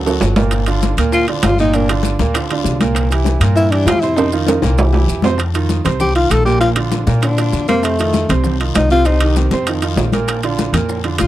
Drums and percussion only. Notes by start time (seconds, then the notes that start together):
0.06 high bongo, high conga, high timbale, maracas
0.21 high bongo, low bongo, high conga, low timbale, short guiro, maracas
0.36 high bongo, high conga, low timbale, short guiro, maracas
0.51 high bongo, high conga, high timbale, long guiro, maracas
0.66 high bongo, high conga, high timbale, maracas
0.82 high bongo, high conga, short guiro, maracas
0.97 high conga, high timbale, short guiro, maracas
1.12 high bongo, high conga, long guiro, maracas
1.28 high bongo, high conga, high timbale
1.43 high bongo, low bongo, high conga, high timbale, low timbale, short guiro, maracas
1.58 high bongo, high conga, short guiro, maracas
1.73 high bongo, high conga, high timbale, long guiro, maracas
1.88 high bongo, high conga, high timbale, maracas
2.03 high bongo, high conga, short guiro, maracas
2.19 high conga, short guiro, maracas
2.34 high bongo, high timbale, long guiro, maracas
2.49 high bongo, high conga, high timbale
2.64 high bongo, low bongo, high conga, short guiro, maracas
2.79 high bongo, high conga, high timbale, short guiro, maracas
2.95 high bongo, high conga, high timbale, long guiro, maracas
3.10 high bongo, high conga, high timbale, maracas
3.25 high bongo, high conga, short guiro, maracas
3.41 high conga, high timbale, short guiro, maracas
3.56 high bongo, high conga, long guiro, maracas
3.71 high bongo, high conga, high timbale
3.86 high bongo, low bongo, high conga, high timbale, low timbale, short guiro, maracas
4.02 high bongo, high conga, short guiro, maracas
4.16 high bongo, high conga, high timbale, long guiro, maracas
4.32 high bongo, high conga, maracas
4.47 high bongo, high conga, high timbale, short guiro, maracas
4.62 high bongo, high conga, short guiro, maracas
4.78 high conga, low timbale, long guiro, maracas
4.93 low bongo, high conga, low timbale
5.08 high conga, short guiro, maracas
5.22 low bongo, high conga, low timbale, short guiro, maracas
5.38 high bongo, high conga, high timbale, long guiro, maracas
5.54 high bongo, high conga, high timbale, maracas
5.69 high bongo, high conga, short guiro, maracas
5.85 high conga, low conga, high timbale, short guiro, maracas
6.00 high bongo, high conga, low conga, long guiro, maracas
6.15 high bongo, high conga, high timbale
6.30 high bongo, low bongo, high conga, high timbale, short guiro, maracas
6.46 high bongo, high conga, short guiro, maracas
6.61 high bongo, high conga, high timbale, long guiro, maracas
6.76 high bongo, high conga, high timbale
6.92 high bongo, high conga, short guiro, maracas
7.07 high conga, short guiro, maracas
7.22 high bongo, high conga, high timbale, long guiro, maracas
7.37 high bongo, high conga, high timbale, maracas
7.53 high bongo, low bongo, high conga, short guiro, maracas
7.68 high bongo, high conga, high timbale, short guiro, maracas
7.83 high bongo, high conga, high timbale, long guiro, maracas
7.98 high bongo, high conga, high timbale, maracas
8.13 high bongo, high conga, short guiro, maracas
8.29 high conga, low conga, high timbale, short guiro, maracas
8.44 high bongo, high conga, low conga, long guiro, maracas
8.59 high bongo, high conga, high timbale
8.75 high bongo, low bongo, high conga, high timbale, low timbale, short guiro, maracas
8.90 high bongo, high conga, short guiro, maracas
9.05 high bongo, high conga, high timbale, long guiro, maracas
9.21 high bongo, high conga, high timbale
9.36 high bongo, high conga, short guiro, maracas
9.51 high conga, short guiro, maracas
9.67 high bongo, high conga, high timbale, long guiro, maracas
9.81 high bongo, high conga, high timbale, maracas
9.97 high bongo, low bongo, low timbale, short guiro, maracas
10.12 high bongo, high conga, high timbale, short guiro, maracas
10.28 high bongo, high conga, high timbale, long guiro, maracas
10.43 high bongo, high conga, high timbale, maracas
10.58 high bongo, high conga, short guiro, maracas
10.74 high conga, low conga, high timbale, short guiro, maracas
10.89 high bongo, high conga, long guiro, maracas
11.04 high bongo, high conga, high timbale
11.18 high bongo, low bongo, high conga, high timbale, short guiro, maracas